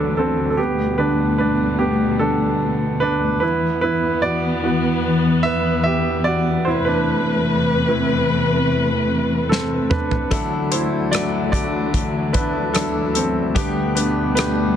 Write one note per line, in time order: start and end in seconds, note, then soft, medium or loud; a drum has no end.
0.00 3.38 D2 medium
0.00 0.54 D3 soft
0.00 0.55 D3 medium
0.00 0.55 E3 soft
0.00 0.55 F#3 medium
0.00 0.54 A3 soft
0.00 0.61 D4 medium
0.00 0.60 F#4 medium
0.00 0.17 A4 medium
0.00 0.60 B4 medium
0.00 0.61 D5 medium
0.17 0.50 C4 soft
0.17 0.49 A4 medium
0.50 0.58 A4 soft
0.57 3.39 B2 medium
0.57 3.39 G3 medium
0.57 3.39 A3 medium
0.57 0.96 B3 medium
0.57 1.00 G4 medium
0.98 1.53 D3 soft
0.98 1.53 B3 soft
0.98 1.09 D4 medium
0.98 1.07 B4 medium
1.38 1.78 D4 medium
1.38 1.81 B4 medium
1.79 1.90 B3 soft
1.79 1.88 G4 medium
2.19 2.57 D3 soft
2.19 2.57 B3 soft
2.19 2.98 D4 soft
2.19 3.03 A4 medium
3.00 3.40 D4 medium
3.00 3.39 B4 medium
3.40 10.28 E2 medium
3.40 6.64 E3 medium
3.40 6.64 B3 medium
3.40 3.80 E4 soft
3.40 3.80 B4 medium
3.81 3.92 E4 medium
3.81 3.91 B4 medium
4.22 4.63 F#4 medium
4.22 5.00 D5 medium
4.63 5.81 E3 soft
4.63 5.81 B3 soft
4.63 5.82 F#4 soft
5.43 5.83 B4 medium
5.43 5.82 E5 medium
5.84 6.23 G4 medium
5.84 6.22 E5 medium
6.24 6.64 F#4 medium
6.24 6.67 D5 medium
6.65 10.28 C3 medium
6.65 10.28 A3 medium
6.65 6.86 E4 medium
6.65 10.28 B4 medium
6.65 6.87 C5 medium
6.85 8.45 D4 soft
6.85 8.44 B4 medium
7.88 9.06 E3 soft
7.88 9.06 C4 soft
7.88 9.06 E4 soft
9.49 9.89 C4 medium
9.49 9.92 A4 medium
9.49 snare soft
9.90 10.29 D4 soft
9.90 10.32 B4 medium
9.90 mid tom medium
10.11 floor tom medium
10.31 14.76 D2 medium
10.31 10.72 D3 medium
10.31 13.52 D3 medium
10.31 11.49 D3 soft
10.31 13.52 E3 medium
10.31 13.52 F#3 medium
10.31 10.72 F#3 medium
10.31 10.72 A3 medium
10.31 11.49 A3 soft
10.31 10.72 D4 medium
10.31 10.70 D4 medium
10.31 10.70 E4 medium
10.31 11.12 F#4 medium
10.31 10.69 A4 medium
10.31 kick loud
10.31 closed hi-hat medium
10.71 11.12 A3 soft
10.71 11.13 D4 soft
10.71 11.12 E4 soft
10.71 11.11 E4 soft
10.71 11.13 C5 medium
10.71 closed hi-hat medium
11.11 11.53 F#3 soft
11.11 11.53 A3 medium
11.11 11.53 D4 medium
11.11 11.51 E4 medium
11.11 11.51 F#4 medium
11.11 11.50 D5 medium
11.11 cross-stick loud
11.11 closed hi-hat medium
11.52 11.89 D3 soft
11.52 11.90 A3 soft
11.52 12.35 D4 soft
11.52 12.32 E4 soft
11.52 12.31 F#4 medium
11.52 12.30 D5 medium
11.52 kick medium
11.52 closed hi-hat medium
11.94 kick medium
11.94 closed hi-hat medium
12.33 12.74 A3 soft
12.33 12.75 D4 soft
12.33 12.72 D4 soft
12.33 12.74 E4 soft
12.33 12.75 B4 medium
12.33 kick medium
12.33 closed hi-hat medium
12.74 13.55 F#3 soft
12.74 13.56 A3 soft
12.74 13.13 D4 medium
12.74 13.56 D4 soft
12.74 13.57 E4 soft
12.74 13.13 A4 medium
12.74 cross-stick medium
12.74 closed hi-hat medium
13.14 13.54 C4 medium
13.14 13.56 A4 medium
13.14 closed hi-hat medium
13.55 14.76 B2 medium
13.55 13.96 D3 medium
13.55 14.73 D3 soft
13.55 13.96 G3 medium
13.55 14.76 G3 medium
13.55 14.76 A3 medium
13.55 13.97 A3 medium
13.55 13.94 B3 medium
13.55 13.96 B3 medium
13.55 13.96 D4 soft
13.55 13.97 G4 medium
13.55 13.95 G4 medium
13.55 kick loud
13.55 closed hi-hat medium
13.95 14.36 A3 soft
13.95 14.37 B3 soft
13.95 14.34 D4 medium
13.95 14.37 G4 soft
13.95 14.34 B4 medium
13.95 closed hi-hat medium
14.35 14.76 G3 medium
14.35 14.76 A3 medium
14.35 14.76 B3 medium
14.35 14.75 D4 medium
14.35 14.76 B4 medium
14.35 cross-stick medium
14.35 closed hi-hat medium
14.39 14.76 G4 medium